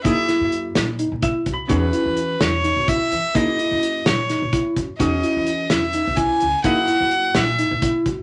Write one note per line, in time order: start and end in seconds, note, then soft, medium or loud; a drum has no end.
0.04 0.24 F#2 medium
0.04 1.66 A#3 medium
0.04 0.18 D#4 medium
0.04 1.67 E4 medium
0.04 1.67 G#4 medium
0.04 0.49 E5 medium
0.04 kick loud
0.04 closed hi-hat medium
0.28 0.54 E4 medium
0.28 snare soft
0.28 closed hi-hat medium
0.40 0.69 F#2 medium
0.52 closed hi-hat medium
0.75 1.04 A#2 medium
0.75 0.89 E4 medium
0.75 snare loud
0.75 closed hi-hat medium
0.99 1.12 D#4 medium
0.99 closed hi-hat medium
1.12 1.30 A#2 medium
1.22 1.49 E4 medium
1.22 1.52 E5 medium
1.22 kick loud
1.22 closed hi-hat medium
1.46 1.56 B1 medium
1.46 kick medium
1.46 closed hi-hat soft
1.54 1.68 B5 medium
1.68 1.89 E2 loud
1.68 3.31 C#4 medium
1.68 1.83 D#4 medium
1.68 3.31 F#4 medium
1.68 3.32 G#4 medium
1.68 2.43 B4 medium
1.68 kick medium
1.68 closed hi-hat medium
1.93 2.19 E4 medium
1.93 closed hi-hat medium
2.05 2.34 E3 medium
2.17 closed hi-hat soft
2.41 2.69 E2 medium
2.41 2.54 E4 medium
2.41 2.90 C#5 medium
2.41 snare loud
2.41 closed hi-hat medium
2.64 2.77 D#4 medium
2.64 closed hi-hat medium
2.76 2.95 B1 medium
2.88 3.14 E4 medium
2.88 3.38 E5 medium
2.88 kick medium
2.88 closed hi-hat medium
3.12 3.21 E3 medium
3.12 closed hi-hat medium
3.35 3.54 F#2 medium
3.35 4.96 A#3 medium
3.35 3.48 D#4 medium
3.35 4.97 E4 medium
3.35 4.97 G#4 medium
3.35 4.08 D#5 medium
3.35 kick medium
3.35 closed hi-hat medium
3.59 3.84 E4 medium
3.59 closed hi-hat soft
3.71 3.99 F#2 medium
3.83 closed hi-hat medium
4.05 4.34 A#2 medium
4.05 4.18 E4 medium
4.05 4.53 C#5 medium
4.05 snare loud
4.05 closed hi-hat medium
4.29 4.42 D#4 medium
4.29 snare soft
4.29 closed hi-hat medium
4.42 4.60 A#2 medium
4.53 4.79 E4 medium
4.53 kick medium
4.53 closed hi-hat medium
4.76 4.86 F#2 medium
4.76 kick medium
4.76 closed hi-hat soft
4.99 5.19 E2 medium
4.99 6.61 C#4 medium
4.99 5.13 D#4 medium
4.99 6.62 F#4 medium
4.99 6.62 G#4 medium
4.99 5.72 D#5 medium
4.99 kick medium
4.99 closed hi-hat medium
5.24 5.49 E4 medium
5.24 closed hi-hat medium
5.37 5.64 E3 medium
5.47 closed hi-hat medium
5.70 5.99 E2 medium
5.70 5.84 E4 medium
5.70 6.18 E5 medium
5.70 snare medium
5.70 closed hi-hat medium
5.93 6.07 D#4 medium
5.93 closed hi-hat medium
6.07 6.26 B1 medium
6.16 6.44 E4 medium
6.16 6.64 G#5 medium
6.16 kick medium
6.16 closed hi-hat medium
6.40 6.51 C#2 medium
6.40 closed hi-hat soft
6.64 6.84 F#2 medium
6.64 8.23 A#3 medium
6.64 6.78 D#4 medium
6.64 8.23 E4 medium
6.64 8.23 G#4 medium
6.64 7.37 F#5 medium
6.64 kick medium
6.64 closed hi-hat medium
6.88 7.14 E4 medium
6.88 closed hi-hat soft
7.00 7.29 F#2 medium
7.11 closed hi-hat soft
7.35 7.64 A#2 medium
7.35 7.48 E4 medium
7.35 7.83 E5 medium
7.35 snare loud
7.35 closed hi-hat medium
7.59 7.72 D#4 medium
7.59 closed hi-hat medium
7.71 7.90 A#2 medium
7.82 8.08 E4 medium
7.82 kick medium
7.82 closed hi-hat medium
8.06 8.15 F#2 medium
8.06 kick medium
8.06 closed hi-hat medium